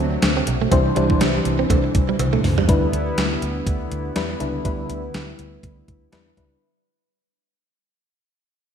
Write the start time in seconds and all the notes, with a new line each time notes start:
Already playing: C3 F#3 A3 D4 F#4 C5
0.00 D2
0.22 D2, snare, closed hi-hat, cowbell
0.37 C4
0.47 B1, muted clean electric guitar stroke, closed hi-hat
0.62 A3
0.71 C2 E3 G3 C4 D4 E4 C5, kick, closed hi-hat, cowbell
0.86 muted clean electric guitar stroke
0.96 C2 G3 D4 E4 C5, closed hi-hat
1.10 kick
1.21 C2 G3, snare, closed hi-hat, cowbell
1.35 muted clean electric guitar stroke
1.45 C2, closed hi-hat
1.59 C4
1.70 C2 A3, kick, closed hi-hat, cowbell
1.84 muted clean electric guitar stroke
1.95 C2, kick, closed hi-hat
2.09 G3
2.19 C2, closed hi-hat, high tom, cowbell
2.33 A3, mid tom
2.44 C#2, muted clean electric guitar stroke, mid tom, open hi-hat
2.58 G3, floor tom
2.68 D2 D3 G3 B3 D4 E4 B4, kick, closed hi-hat
2.93 D2, closed hi-hat
3.18 D2, snare, closed hi-hat
3.42 D2, closed hi-hat
3.67 D2, kick, closed hi-hat
3.91 D2, closed hi-hat
4.16 E2 G3 D4 E4 B4, snare, closed hi-hat
4.40 C#2 G3 D4 E4 B4, closed hi-hat
4.64 D2 G3 D4 E4 B4, kick, closed hi-hat
4.90 D2, closed hi-hat
5.14 D2, snare, closed hi-hat
5.39 D2, closed hi-hat
5.63 D2, kick, closed hi-hat
5.88 D2, kick, closed hi-hat
6.12 E2 G3 D4 E4 B4, snare, closed hi-hat
6.37 C#2 G3 D4 E4 B4, kick, closed hi-hat